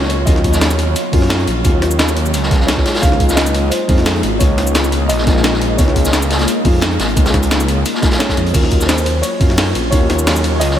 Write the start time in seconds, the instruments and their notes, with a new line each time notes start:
Already playing: detuned saw bass C#2, felt piano F#3 A#3 C#4 F4, ambient pad F#3 F4 C#5
0.01 snare
0.08 grand piano C#5, closed hi-hat
0.25 detuned saw bass D#2, felt piano F#3 A#3 C#4 F4, grand piano D#5, kick, closed hi-hat, cabasa
0.36 snare
0.44 kick, closed hi-hat
0.52 snare, cabasa
0.61 snare, closed hi-hat, cabasa
0.70 closed hi-hat, cabasa
0.79 closed hi-hat
0.96 closed hi-hat, cabasa
1.12 detuned saw bass F#2, felt piano F#3 A#3 C#4 F4, kick, closed hi-hat, open hi-hat
1.22 snare
1.29 snare, closed hi-hat, cabasa
1.39 closed hi-hat
1.47 detuned saw bass A#1, closed hi-hat
1.64 detuned saw bass D#2, felt piano F#3 A#3 C#4 F4, kick, closed hi-hat, cabasa
1.82 snare, closed hi-hat
1.91 cabasa
1.99 snare, closed hi-hat, cabasa
2.08 cabasa
2.16 closed hi-hat
2.26 cabasa
2.34 detuned saw bass C#2, closed hi-hat, cabasa
2.43 snare
2.51 kick, snare, closed hi-hat
2.60 snare
2.67 grand piano C#5, snare, closed hi-hat, cabasa
2.77 felt piano G#3 A#3 D#4 F4, kick, snare
2.86 ambient pad A#3 D#5, snare, closed hi-hat
2.94 snare, closed hi-hat
2.98 felt piano G#3, grand piano F5, snare, closed hi-hat
3.03 detuned saw bass C#2, felt piano A#3 D#4 F4, kick, closed hi-hat, cabasa
3.12 snare
3.20 kick, closed hi-hat
3.29 snare, cabasa
3.36 grand piano D#5, snare, closed hi-hat, cabasa
3.46 closed hi-hat, cabasa
3.54 closed hi-hat
3.70 grand piano C5, closed hi-hat, cabasa
3.88 detuned saw bass F2, felt piano G#3 A#3 D#4 F4, kick, closed hi-hat, open hi-hat
3.98 snare
4.06 snare, closed hi-hat, cabasa
4.16 closed hi-hat
4.23 detuned saw bass G#1, closed hi-hat
4.39 detuned saw bass C#2, felt piano G#3 A#3 D#4 F4, grand piano C#5, kick, closed hi-hat, cabasa
4.58 snare, closed hi-hat
4.67 cabasa
4.74 snare, closed hi-hat, cabasa
4.84 cabasa
4.92 closed hi-hat
5.08 detuned saw bass A#1, grand piano D#5, closed hi-hat, cabasa
5.18 snare
5.26 felt piano G#3 A#3 D#4 F4, kick, snare, closed hi-hat
5.36 snare
5.43 snare, closed hi-hat, cabasa
5.53 snare
5.62 closed hi-hat
5.77 detuned saw bass C#2, felt piano G#3 A#3 D#4 F4, grand piano C#5, kick, closed hi-hat, cabasa
5.88 snare
5.96 kick, closed hi-hat
6.05 snare, cabasa
6.13 snare, closed hi-hat, cabasa
6.22 closed hi-hat, cabasa
6.31 snare, closed hi-hat
6.39 snare, closed hi-hat
6.48 closed hi-hat, cabasa
6.64 detuned saw bass F2, felt piano G#3 A#3 D#4 F4, kick, closed hi-hat, open hi-hat
6.81 snare, closed hi-hat, cabasa
6.91 closed hi-hat
6.99 detuned saw bass G#1, snare, closed hi-hat
7.09 closed hi-hat
7.16 detuned saw bass C#2, felt piano G#3 A#3 D#4 F4, kick, closed hi-hat, cabasa
7.26 snare, closed hi-hat, cabasa
7.34 kick, snare, closed hi-hat
7.42 closed hi-hat, cabasa
7.51 snare, closed hi-hat, cabasa
7.60 closed hi-hat, cabasa
7.68 closed hi-hat
7.86 closed hi-hat, cabasa
7.94 snare
8.01 felt piano G#3 A#3 D#4 F4, kick, snare, closed hi-hat
8.11 snare, closed hi-hat
8.19 grand piano C#5, snare, closed hi-hat, cabasa
8.29 kick, snare, closed hi-hat
8.37 detuned saw bass F2, closed hi-hat
8.46 closed hi-hat
8.53 detuned saw bass D#2, felt piano F#3 A#3 C#4 F4, ambient pad F#3 F4 C#5, grand piano A#4, kick, closed hi-hat, crash, ride, cabasa
8.63 snare
8.70 kick, closed hi-hat
8.80 snare, cabasa
8.87 grand piano C5, snare, closed hi-hat, ride, cabasa
8.98 closed hi-hat, cabasa
9.05 grand piano C5, closed hi-hat
9.22 grand piano C#5, closed hi-hat, ride, cabasa
9.39 detuned saw bass F#2, felt piano F#3 A#3 C#4 F4, kick, closed hi-hat, open hi-hat
9.50 snare
9.58 snare, closed hi-hat, ride, cabasa
9.66 closed hi-hat
9.75 detuned saw bass A#1, closed hi-hat
9.90 detuned saw bass D#2, felt piano F#3 A#3 C#4 F4, grand piano C#5, kick, closed hi-hat, ride, cabasa
10.09 snare, closed hi-hat
10.19 cabasa
10.27 snare, closed hi-hat, ride, cabasa
10.36 cabasa
10.44 closed hi-hat
10.60 detuned saw bass C#2, grand piano D#5, closed hi-hat, ride, cabasa
10.70 snare